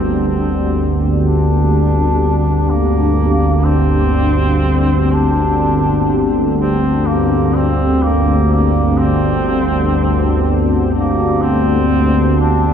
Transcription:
0.00 12.73 G1 medium
0.00 0.48 D2 medium
0.00 12.73 D2 medium
0.00 3.17 D3 medium
0.00 12.73 A#3 medium
0.00 0.27 C4 medium
0.00 12.73 C4 medium
0.00 12.73 D4 medium
0.00 12.73 G4 medium
0.27 0.93 C4 medium
1.23 2.72 D4 medium
2.70 3.68 A#3 medium
3.66 5.14 C4 loud
5.13 6.30 D4 medium
6.58 7.09 C4 medium
7.08 7.59 A#3 medium
7.57 8.06 C4 medium
8.04 8.51 A#3 medium
8.54 9.01 A#3 medium
9.00 10.65 C4 loud
10.94 11.44 A#3 medium
11.43 12.38 C4 loud
11.76 12.73 A#3 medium
12.39 12.73 D4 medium

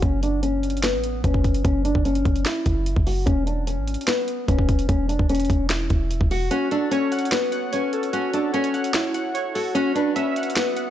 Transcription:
0.02 0.95 F#1 loud
0.02 0.20 C#4 loud
0.02 kick loud
0.02 closed hi-hat medium
0.23 0.40 D4 medium
0.23 closed hi-hat medium
0.43 0.81 C#4 medium
0.43 closed hi-hat medium
0.63 closed hi-hat medium
0.70 closed hi-hat medium
0.77 closed hi-hat medium
0.83 1.21 B3 medium
0.83 finger snap medium
0.83 snare loud
0.83 closed hi-hat medium
0.94 1.22 A1 loud
1.04 closed hi-hat medium
1.24 1.63 F#1 loud
1.24 1.63 C#4 medium
1.24 kick medium
1.24 closed hi-hat medium
1.34 kick medium
1.44 kick medium
1.44 closed hi-hat medium
1.54 closed hi-hat medium
1.65 1.94 F#1 loud
1.65 1.82 C#4 loud
1.65 kick loud
1.65 closed hi-hat medium
1.85 2.02 D4 medium
1.85 closed hi-hat medium
1.95 2.24 F#1 loud
1.95 kick medium
2.05 2.43 C#4 medium
2.05 closed hi-hat medium
2.15 closed hi-hat medium
2.25 2.45 F#1 loud
2.25 kick loud
2.25 closed hi-hat soft
2.36 closed hi-hat medium
2.46 3.03 E4 medium
2.46 finger snap medium
2.46 snare loud
2.46 closed hi-hat medium
2.66 2.95 F#1 loud
2.66 kick medium
2.66 closed hi-hat medium
2.86 closed hi-hat medium
2.96 3.26 F#1 loud
2.96 kick medium
3.07 3.24 F#4 medium
3.07 open hi-hat medium
3.26 3.79 E1 loud
3.26 3.44 C#4 loud
3.26 kick loud
3.26 closed hi-hat medium
3.46 3.64 D4 medium
3.46 closed hi-hat medium
3.67 4.05 C#4 medium
3.67 closed hi-hat medium
3.77 3.97 G#1 loud
3.88 closed hi-hat medium
3.94 closed hi-hat medium
4.01 closed hi-hat medium
4.07 4.46 B3 medium
4.07 finger snap medium
4.07 snare loud
4.07 closed hi-hat medium
4.28 closed hi-hat medium
4.48 4.87 E1 loud
4.48 4.87 C#4 medium
4.48 kick medium
4.48 closed hi-hat medium
4.59 kick medium
4.69 kick medium
4.69 closed hi-hat medium
4.79 closed hi-hat medium
4.89 5.18 E1 loud
4.89 5.06 C#4 loud
4.89 kick loud
4.89 closed hi-hat medium
5.09 5.26 D4 medium
5.09 closed hi-hat medium
5.19 5.48 E1 loud
5.19 kick medium
5.29 5.68 C#4 medium
5.29 closed hi-hat medium
5.35 closed hi-hat medium
5.40 closed hi-hat medium
5.45 closed hi-hat medium
5.50 5.89 E1 loud
5.50 kick loud
5.50 closed hi-hat medium
5.69 6.27 E4 medium
5.69 finger snap medium
5.69 snare loud
5.69 closed hi-hat medium
5.90 6.19 E1 loud
5.90 kick medium
5.90 closed hi-hat medium
6.11 closed hi-hat medium
6.21 6.50 E1 loud
6.21 kick medium
6.31 6.48 F#4 medium
6.31 open hi-hat medium
6.51 6.68 C#4 loud
6.51 7.52 F#4 medium
6.51 closed hi-hat medium
6.71 6.89 D4 medium
6.71 7.73 A4 medium
6.71 closed hi-hat medium
6.91 7.30 C#4 medium
6.91 7.71 C#5 loud
6.91 closed hi-hat medium
7.12 7.50 F#5 medium
7.12 closed hi-hat medium
7.19 closed hi-hat medium
7.25 closed hi-hat medium
7.32 7.70 B3 medium
7.32 finger snap medium
7.32 snare loud
7.32 closed hi-hat medium
7.52 8.53 F#5 medium
7.52 closed hi-hat medium
7.73 8.11 C#4 medium
7.73 8.52 C#5 medium
7.73 closed hi-hat medium
7.93 8.33 A4 medium
7.93 closed hi-hat medium
8.03 closed hi-hat medium
8.13 8.31 C#4 medium
8.13 9.14 F#4 medium
8.13 closed hi-hat medium
8.34 8.51 D4 medium
8.34 9.35 A4 medium
8.34 closed hi-hat medium
8.53 8.92 C#4 medium
8.53 9.33 C#5 medium
8.53 closed hi-hat medium
8.64 closed hi-hat medium
8.74 9.13 F#5 medium
8.74 closed hi-hat soft
8.84 closed hi-hat medium
8.94 9.52 E4 medium
8.94 finger snap medium
8.94 snare loud
8.94 closed hi-hat medium
9.14 9.75 F#5 medium
9.14 closed hi-hat medium
9.34 9.75 C#5 medium
9.34 closed hi-hat medium
9.55 9.73 F#4 medium
9.55 9.75 A4 medium
9.55 open hi-hat medium
9.75 9.92 C#4 loud
9.75 10.77 F#4 medium
9.75 closed hi-hat medium
9.95 10.13 D4 medium
9.95 10.90 B4 medium
9.95 closed hi-hat medium
10.16 10.54 C#4 medium
10.16 10.90 E5 loud
10.16 closed hi-hat medium
10.36 10.75 F#5 medium
10.36 closed hi-hat medium
10.43 closed hi-hat medium
10.50 closed hi-hat medium
10.56 10.90 B3 medium
10.56 finger snap medium
10.56 snare loud
10.56 closed hi-hat medium
10.76 10.90 F#5 medium
10.76 closed hi-hat medium

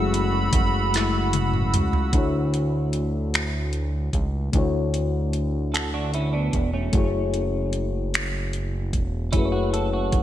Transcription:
0.00 0.50 F#1 loud
0.00 1.71 F#3 medium
0.00 0.95 G#3 medium
0.00 0.95 A3 medium
0.00 2.15 C#4 medium
0.00 0.94 E4 medium
0.00 1.70 F#4 medium
0.00 2.10 F#4 medium
0.00 2.15 G#4 medium
0.00 2.16 A4 medium
0.00 2.15 C#5 medium
0.00 2.10 F#5 medium
0.00 2.11 B5 medium
0.00 2.09 E6 medium
0.14 closed hi-hat soft
0.53 1.77 F#1 medium
0.53 kick loud
0.53 closed hi-hat medium
0.94 1.30 G#3 soft
0.94 1.30 A3 soft
0.94 1.31 E4 medium
0.94 snare medium
0.94 closed hi-hat medium
1.33 closed hi-hat medium
1.33 high tom medium
1.54 mid tom medium
1.74 2.10 C#2 medium
1.74 closed hi-hat medium
1.74 mid tom medium
1.93 floor tom medium
2.12 4.10 D2 medium
2.12 4.49 A3 medium
2.12 4.50 D4 medium
2.12 4.50 E4 medium
2.12 kick medium
2.12 closed hi-hat medium
2.17 4.51 F#4 medium
2.17 4.52 C#5 medium
2.54 closed hi-hat soft
2.93 closed hi-hat soft
3.34 finger snap medium
3.34 closed hi-hat medium
3.73 closed hi-hat soft
4.13 4.50 C#2 medium
4.13 kick medium
4.13 closed hi-hat soft
4.52 6.50 D2 loud
4.52 6.89 A3 medium
4.52 6.90 D4 medium
4.52 6.90 E4 medium
4.52 kick medium
4.52 closed hi-hat medium
4.57 6.91 F#4 medium
4.57 6.92 C#5 medium
4.94 closed hi-hat soft
5.33 closed hi-hat soft
5.74 5.93 F#4 soft
5.74 5.93 A4 medium
5.74 finger snap medium
5.74 closed hi-hat medium
5.94 6.13 D4 medium
5.94 6.13 F#4 medium
6.14 6.33 C#4 medium
6.14 6.33 E4 medium
6.14 closed hi-hat soft
6.33 6.72 B3 medium
6.33 6.71 D4 medium
6.53 6.90 E1 loud
6.53 kick medium
6.53 closed hi-hat soft
6.73 7.12 A3 medium
6.73 7.11 C#4 medium
6.92 8.96 F#1 loud
6.92 9.29 A3 medium
6.92 9.30 E4 medium
6.92 9.30 F#4 medium
6.92 kick loud
6.92 closed hi-hat medium
6.97 9.31 G#4 medium
6.97 9.32 C#5 medium
7.34 closed hi-hat soft
7.73 closed hi-hat soft
8.14 finger snap medium
8.14 closed hi-hat medium
8.53 closed hi-hat soft
8.93 9.36 E1 medium
8.93 kick medium
8.93 closed hi-hat soft
9.32 10.23 F#1 loud
9.32 10.23 A3 medium
9.32 9.52 C#4 soft
9.32 9.52 E4 medium
9.32 10.23 E4 medium
9.32 10.23 F#4 medium
9.32 kick medium
9.32 closed hi-hat medium
9.37 10.23 G#4 medium
9.37 9.43 B4 medium
9.45 10.23 C#5 medium
9.52 9.72 F#4 medium
9.73 9.92 F#4 soft
9.73 9.92 A4 medium
9.73 closed hi-hat soft
9.93 10.23 F#4 medium
10.12 kick medium
10.12 closed hi-hat soft

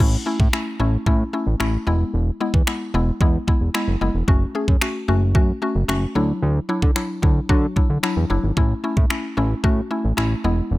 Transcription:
0.00 0.17 A1 loud
0.00 0.15 A3 loud
0.00 0.15 C#4 loud
0.00 0.15 E4 loud
0.00 kick loud
0.00 crash medium
0.26 0.41 A3 medium
0.26 0.42 C#4 medium
0.26 0.42 E4 medium
0.40 0.48 A2 loud
0.40 kick medium
0.53 0.68 A3 medium
0.53 0.68 C#4 medium
0.53 0.69 E4 loud
0.53 finger snap loud
0.80 0.97 A1 medium
0.80 0.95 A3 medium
0.80 0.95 C#4 medium
0.80 0.95 E4 medium
1.06 1.24 A2 loud
1.06 1.22 A3 loud
1.06 1.22 C#4 loud
1.06 1.22 E4 loud
1.06 kick medium
1.33 1.49 A3 medium
1.33 1.49 C#4 medium
1.33 1.49 E4 medium
1.47 1.55 A1 medium
1.60 1.78 A1 loud
1.60 1.75 A3 loud
1.60 1.75 C#4 loud
1.60 1.76 E4 loud
1.60 finger snap loud
1.87 2.04 E1 medium
1.87 2.30 G#3 medium
1.87 2.30 B3 medium
1.87 2.30 E4 loud
2.14 2.31 E1 loud
2.41 2.56 G#3 medium
2.41 2.56 B3 medium
2.41 2.56 E4 medium
2.54 2.63 E2 medium
2.54 kick medium
2.67 2.83 G#3 medium
2.67 2.83 B3 medium
2.67 2.83 E4 loud
2.67 finger snap loud
2.94 3.11 E1 loud
2.94 3.09 G#3 medium
2.94 3.10 B3 medium
2.94 3.10 E4 loud
3.21 3.38 E2 loud
3.21 3.36 G#3 loud
3.21 3.36 B3 loud
3.21 3.37 E4 loud
3.21 kick medium
3.48 3.63 G#3 medium
3.48 3.63 B3 medium
3.48 3.63 E4 loud
3.48 kick medium
3.61 3.70 E1 medium
3.74 3.90 G#3 loud
3.74 3.90 B3 medium
3.74 3.90 E4 loud
3.74 finger snap loud
3.88 3.97 F#1 medium
4.01 4.10 F#1 medium
4.01 4.17 G#3 medium
4.01 4.17 B3 medium
4.01 4.17 E4 medium
4.15 4.23 E1 medium
4.28 4.45 F#1 loud
4.28 4.43 A3 loud
4.28 4.43 C#4 loud
4.28 4.43 F#4 loud
4.28 kick loud
4.55 4.70 A3 medium
4.55 4.70 C#4 medium
4.55 4.70 G#4 medium
4.68 4.77 F#2 loud
4.68 kick medium
4.81 4.97 A3 medium
4.81 4.97 C#4 medium
4.81 4.97 F#4 loud
4.81 finger snap loud
5.08 5.36 F#1 medium
5.08 5.24 A3 medium
5.08 5.24 C#4 medium
5.08 5.24 F#4 medium
5.35 5.52 F#2 loud
5.35 5.50 A3 loud
5.35 5.50 C#4 loud
5.35 5.51 F#4 loud
5.35 kick medium
5.62 5.77 A3 medium
5.62 5.77 C#4 medium
5.62 5.78 F#4 loud
5.75 5.84 F#1 medium
5.88 6.06 F#1 loud
5.88 6.04 A3 loud
5.88 6.04 C#4 loud
5.88 6.04 F#4 loud
5.88 finger snap loud
6.15 6.33 D2 loud
6.15 6.58 F#3 medium
6.15 6.59 D4 medium
6.15 6.59 E4 loud
6.42 6.60 D2 loud
6.69 6.84 F#3 medium
6.69 6.84 D4 medium
6.69 6.85 E4 medium
6.82 6.91 D3 loud
6.82 kick medium
6.96 7.11 F#3 medium
6.96 7.11 D4 medium
6.96 7.11 E4 loud
6.96 finger snap loud
7.22 7.40 D2 loud
7.22 7.38 F#3 medium
7.22 7.38 D4 medium
7.22 7.38 E4 loud
7.22 kick loud
7.49 7.67 D3 loud
7.49 7.65 F#3 loud
7.49 7.65 D4 loud
7.49 7.65 F#4 loud
7.49 kick medium
7.76 7.92 F#3 medium
7.76 7.92 D4 medium
7.76 7.92 E4 medium
7.76 kick medium
7.90 7.98 D2 medium
8.03 8.18 F#3 loud
8.03 8.18 D4 loud
8.03 8.19 E4 loud
8.03 finger snap loud
8.17 8.25 E2 medium
8.30 8.39 F#1 medium
8.30 8.45 F#3 medium
8.30 8.45 D4 medium
8.30 8.45 E4 medium
8.44 8.52 G#1 medium
8.57 8.74 A1 loud
8.57 8.72 A3 loud
8.57 8.72 C#4 loud
8.57 8.72 E4 loud
8.57 kick loud
8.84 8.99 A3 medium
8.84 8.99 C#4 medium
8.84 8.99 E4 loud
8.97 9.06 A2 loud
8.97 kick medium
9.10 9.25 A3 medium
9.10 9.26 C#4 medium
9.10 9.26 E4 loud
9.10 finger snap loud
9.37 9.55 A1 medium
9.37 9.52 A3 medium
9.37 9.53 C#4 medium
9.37 9.53 E4 medium
9.64 9.81 A2 loud
9.64 9.79 A3 loud
9.64 9.79 C#4 loud
9.64 9.79 F#4 loud
9.64 kick medium
9.91 10.06 A3 medium
9.91 10.06 C#4 medium
9.91 10.06 E4 medium
10.04 10.13 A1 medium
10.17 10.35 A1 loud
10.17 10.33 A3 loud
10.17 10.33 C#4 medium
10.17 10.33 E4 loud
10.17 finger snap loud
10.44 10.62 E1 medium
10.44 10.78 G#3 medium
10.44 10.78 B3 medium
10.44 10.78 E4 loud
10.71 10.78 E1 loud

